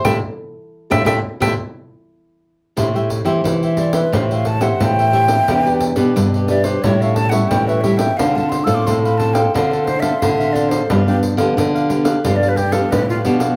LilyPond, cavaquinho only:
\new Staff \with { instrumentName = "Cavaquinho" } { \time 4/4 \key a \minor \tempo 4 = 89 <a' c'' e''>16 r4 <a' c'' e''>16 <a' c'' e''>16 r16 <a' c'' e''>16 r4. r16 | <a' c'' e'' g''>16 <c'' e'' g''>16 r16 <c'' e'' g''>8 <c'' e'' g''>16 <a' c'' e'' g''>16 <c'' e'' g''>16 <a' c'' e'' g''>16 <c'' e'' g''>16 r16 <c'' e'' g''>8 <c'' e'' g''>16 <a' c'' e'' g''>16 <c'' e'' g''>16 | <e' g' b' d''>16 <g' b' d''>16 r16 <g' b' d''>8 <g' b' d''>16 <e' g' b' d''>16 <g' b' d''>16 <g' a' cis'' e''>16 <a' cis'' e''>16 r16 <a' cis'' e''>8 <a' cis'' e''>16 <g' a' cis'' e''>16 <a' cis'' e''>16 | <d' a' c'' f''>16 <a' c'' f''>16 r16 <a' c'' f''>8 <a' c'' f''>16 <d' a' c'' f''>16 <a' c'' f''>16 <d' a' c'' f''>16 <a' c'' f''>16 r16 <a' c'' f''>8 <a' c'' f''>16 <d' a' c'' f''>16 <a' c'' f''>16 |
<d' g' b' f''>16 <g' b' f''>16 r16 <g' b' f''>8 <g' b' f''>16 <d' g' b' f''>16 <g' b' f''>16 <d' g' b' f''>16 <g' b' f''>16 r16 <g' b' f''>8 <g' b' f''>16 <d' g' b' f''>16 <g' b' f''>16 | }